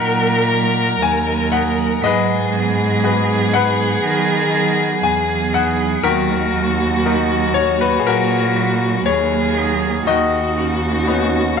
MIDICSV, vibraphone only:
0, 0, Header, 1, 2, 480
1, 0, Start_track
1, 0, Key_signature, -6, "minor"
1, 0, Tempo, 1006711
1, 965, Time_signature, 4, 2, 24, 8
1, 5531, End_track
2, 0, Start_track
2, 0, Title_t, "Vibraphone"
2, 0, Program_c, 0, 11
2, 0, Note_on_c, 0, 58, 53
2, 0, Note_on_c, 0, 63, 61
2, 6, Note_on_c, 0, 54, 64
2, 241, Note_off_c, 0, 54, 0
2, 247, Note_on_c, 0, 54, 56
2, 482, Note_off_c, 0, 58, 0
2, 488, Note_on_c, 0, 58, 55
2, 722, Note_off_c, 0, 54, 0
2, 723, Note_off_c, 0, 58, 0
2, 724, Note_off_c, 0, 63, 0
2, 728, Note_on_c, 0, 54, 58
2, 729, Note_on_c, 0, 58, 57
2, 730, Note_on_c, 0, 63, 64
2, 959, Note_off_c, 0, 54, 0
2, 965, Note_on_c, 0, 54, 80
2, 1015, Note_off_c, 0, 58, 0
2, 1015, Note_off_c, 0, 63, 0
2, 1204, Note_on_c, 0, 59, 57
2, 1438, Note_off_c, 0, 54, 0
2, 1444, Note_off_c, 0, 59, 0
2, 1444, Note_on_c, 0, 54, 55
2, 1449, Note_on_c, 0, 59, 56
2, 1453, Note_on_c, 0, 63, 61
2, 1919, Note_off_c, 0, 54, 0
2, 1924, Note_on_c, 0, 54, 65
2, 2162, Note_off_c, 0, 54, 0
2, 2170, Note_on_c, 0, 54, 60
2, 2401, Note_off_c, 0, 59, 0
2, 2407, Note_on_c, 0, 59, 61
2, 2642, Note_off_c, 0, 54, 0
2, 2643, Note_off_c, 0, 59, 0
2, 2644, Note_off_c, 0, 63, 0
2, 2648, Note_on_c, 0, 54, 55
2, 2649, Note_on_c, 0, 59, 61
2, 2651, Note_on_c, 0, 63, 67
2, 2875, Note_off_c, 0, 54, 0
2, 2881, Note_on_c, 0, 54, 84
2, 2932, Note_off_c, 0, 59, 0
2, 2933, Note_off_c, 0, 63, 0
2, 3129, Note_on_c, 0, 58, 59
2, 3360, Note_off_c, 0, 54, 0
2, 3364, Note_off_c, 0, 58, 0
2, 3368, Note_on_c, 0, 54, 59
2, 3371, Note_on_c, 0, 58, 63
2, 3373, Note_on_c, 0, 63, 62
2, 3838, Note_off_c, 0, 54, 0
2, 3844, Note_on_c, 0, 54, 66
2, 4079, Note_off_c, 0, 54, 0
2, 4085, Note_on_c, 0, 54, 56
2, 4318, Note_off_c, 0, 58, 0
2, 4324, Note_on_c, 0, 58, 57
2, 4557, Note_off_c, 0, 54, 0
2, 4560, Note_off_c, 0, 58, 0
2, 4563, Note_on_c, 0, 54, 59
2, 4565, Note_off_c, 0, 63, 0
2, 4566, Note_on_c, 0, 58, 59
2, 4571, Note_on_c, 0, 63, 64
2, 4801, Note_off_c, 0, 54, 0
2, 4805, Note_off_c, 0, 63, 0
2, 4805, Note_on_c, 0, 63, 84
2, 4851, Note_off_c, 0, 58, 0
2, 5043, Note_on_c, 0, 61, 56
2, 5279, Note_off_c, 0, 61, 0
2, 5284, Note_on_c, 0, 59, 55
2, 5285, Note_on_c, 0, 61, 56
2, 5286, Note_on_c, 0, 66, 60
2, 5531, Note_off_c, 0, 59, 0
2, 5531, Note_off_c, 0, 61, 0
2, 5531, Note_off_c, 0, 63, 0
2, 5531, Note_off_c, 0, 66, 0
2, 5531, End_track
0, 0, End_of_file